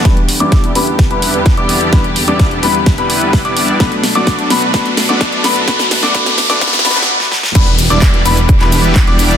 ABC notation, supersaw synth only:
X:1
M:4/4
L:1/16
Q:1/4=128
K:Em
V:1 name="Supersaw synth"
[G,B,DEB] z2 [G,B,DEd]3 [G,B,DEB] z2 [G,B,DEB]4 [G,B,DEd]3 | [G,B,DEB] z2 [G,B,DEd]3 [G,B,DEB] z2 [G,B,DEB]4 [G,B,DEd]3 | [A,B,DFB] z2 [A,B,DFd]3 [A,B,DFB] z [A,B,DFB] z2 [A,B,DFd]3 [A,B,DFB] z | [A,B,DFB] z2 [A,B,DFd] [A,B,DFB] z2 [A,B,DFd] [A,B,DFB] z [A,B,DFB] z4 z |
[G,B,DEB] z2 [G,B,DEd]3 [G,B,DEB] z2 [G,B,DEB]4 [G,B,DEd]3 |]